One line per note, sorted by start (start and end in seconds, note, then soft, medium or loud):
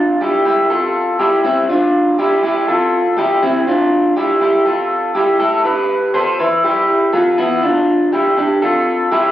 0.00 0.19 D4 medium
0.00 0.18 F4 medium
0.21 0.45 E4 medium
0.21 0.44 G4 medium
0.45 0.70 E4 soft
0.45 0.70 G4 medium
0.70 1.17 F4 medium
0.70 1.17 A4 medium
1.19 1.43 E4 medium
1.19 1.44 G4 medium
1.44 1.70 C4 medium
1.44 1.69 E4 medium
1.69 2.16 D4 medium
1.69 2.16 F4 medium
2.19 2.43 E4 medium
2.19 2.42 G4 medium
2.43 2.68 E4 medium
2.43 2.68 G4 medium
2.68 3.15 F4 medium
2.68 3.15 A4 medium
3.18 3.41 E4 medium
3.18 3.42 G4 medium
3.43 3.68 C4 medium
3.43 3.67 E4 medium
3.67 4.14 D4 medium
3.67 4.14 F4 medium
4.17 4.41 E4 medium
4.17 4.40 G4 medium
4.41 4.65 E4 soft
4.41 4.66 G4 medium
4.65 5.13 F4 medium
4.65 5.12 A4 medium
5.15 5.39 E4 medium
5.15 5.40 G4 medium
5.40 5.65 E4 medium
5.40 5.64 A4 medium
5.65 6.12 G4 medium
5.65 6.11 B4 medium
6.14 6.39 A4 medium
6.14 6.39 C5 medium
6.39 6.64 E4 medium
6.39 6.64 B4 medium
6.64 7.11 E4 medium
6.64 7.11 G4 medium
7.13 7.38 F4 medium
7.13 7.38 A4 medium
7.38 7.62 B3 medium
7.38 7.63 E4 medium
7.63 8.10 D4 medium
7.63 8.09 F4 medium
8.13 8.38 E4 medium
8.13 8.36 G4 medium
8.37 8.63 D4 soft
8.37 8.62 G4 medium
8.62 9.09 F4 soft
8.62 9.09 A4 medium
9.12 9.32 E4 medium
9.12 9.32 G4 medium